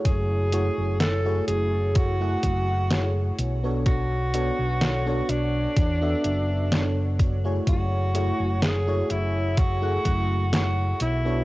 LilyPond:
<<
  \new Staff \with { instrumentName = "Alto saxophone" } { \time 4/4 \key fis \minor \tempo 4 = 63 gis'4 a'8 gis'8 fis'4. r8 | fis'4. d'2 r8 | fis'4 gis'8 e'8 fis'4 fis'8 e'8 | }
  \new Staff \with { instrumentName = "FM electric piano" } { \time 4/4 \key fis \minor <a e' fis' gis' cis''>8 <a e' fis' gis' cis''>8. <a e' fis' gis' cis''>4 <a e' fis' gis' fis''>8. <a e' fis' gis' cis''>8. <b d' fis' a' cis''>16~ | <b d' fis' a' cis''>8 <b d' fis' a' cis''>8. <b d' fis' a' cis''>4 <b d' fis' a' e''>8. <b d' fis' a' cis''>8. <a e' fis' gis' cis''>16~ | <a e' fis' gis' cis''>8 <a e' fis' gis' cis''>8. <a e' fis' gis' cis''>4 <a e' fis' gis' fis''>8. <a e' fis' gis' cis''>8. <b d' fis' a' cis''>16 | }
  \new Staff \with { instrumentName = "Fingered electric bass" } { \clef bass \time 4/4 \key fis \minor fis,,8. fis,,8. fis,,4 fis,,4 b,,8~ | b,,8. b,,8. b,,8 e,8 fis,,4. | fis,,8. fis,,8. fis,,4 fis,,4 b,,8 | }
  \new DrumStaff \with { instrumentName = "Drums" } \drummode { \time 4/4 <hh bd>8 hh8 <hh sn>8 hh8 <hh bd>8 <hh bd>8 <hh sn>8 hh8 | <hh bd>8 hh8 <hh sn>8 hh8 <hh bd>8 hh8 <hh sn>8 <hh bd>8 | <hh bd>8 hh8 <hh sn>8 hh8 <hh bd>8 <hh bd>8 <hh sn>8 hh8 | }
>>